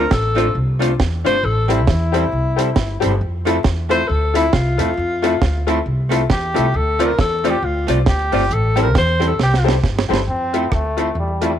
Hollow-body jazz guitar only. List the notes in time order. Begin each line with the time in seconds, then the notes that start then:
0.35 A3 C4 F4
0.79 A3 C4 F4
1.25 A3 C4 F4
1.68 G3 C4 E4
2.13 G3 C4 E4
2.58 G3 C4 E4
3.01 G3 C4 E4
3.45 A3 C4 E4
3.89 A3 C4 E4
4.35 A3 C4 E4
4.79 A3 C4 E4
5.22 A3 C4 E4
5.67 A3 C4 E4
6.09 A3 C4 E4
6.54 A3 C4 E4
6.99 A3 C4 F4
7.44 A3 C4 F4
7.87 A3 C4 F4
8.32 A3 C4 F4
8.76 G3 C4 E4
9.19 G3 C4 E4
9.65 G3 C4 E4
10.10 G3 C4 E4
10.54 A3 C4 E4
10.97 A3 C4 E4
11.14 muted hollow-body jazz guitar stroke
11.41 A3 C4 E4